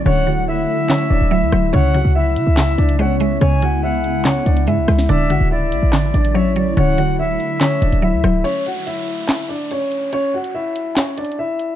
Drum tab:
HH |------------------------------------------------|x-----x-----------x-----x-----x--x--------x-----|x-----x-----------x-----x-----x--x--x-----o-----|x-----x-----------x-----x-----x--x--------x-----|
CP |------------------------x-----------------------|------------------------x-----------------------|------------------------x-----------------------|------------------------x-----------------------|
SD |------------------------o-----------------r-----|------------------------o-----------------------|------------------------o-----------------r--o--|------------------------o-----------------------|

HH |x-----x-----------x-----x-----x--x--------x-----|x-----x-----x-----x-----x-----------x-----x-----|x--------x--------x-----x-----x-x-x-------x-----|
CP |------------------------x-----------------------|------------------------x-----------------------|------------------------x-----------------------|
SD |------------------------o-----------------r-----|------------------------o-----------------------|------------------------o-----------------------|